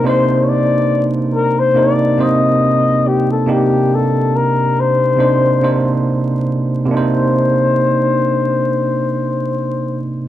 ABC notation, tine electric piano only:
X:1
M:4/4
L:1/8
Q:"Swing 16ths" 1/4=70
K:Cm
V:1 name="Tine electric piano"
[C,B,DEc]3 z [C,B,DEB] [C,B,CEc]2 z | [C,B,DEG]3 z [C,B,DEc] [C,B,DEc]2 z | [C,B,DEc]8 |]